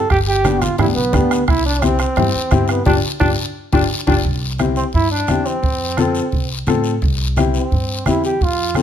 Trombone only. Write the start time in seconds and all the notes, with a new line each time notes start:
Already playing: A4
0.11 G4
0.28 G4
0.62 F4
0.79 E4
0.95 B3
1.48 E4
1.66 D4
1.83 C4
2.01 C4
2.70 B3
2.86 D4
3.20 D4
3.73 D4
4.07 D4
4.76 C4
4.95 E4
5.11 D4
5.46 C4
7.56 C4
8.08 E4
8.25 G4
8.43 F4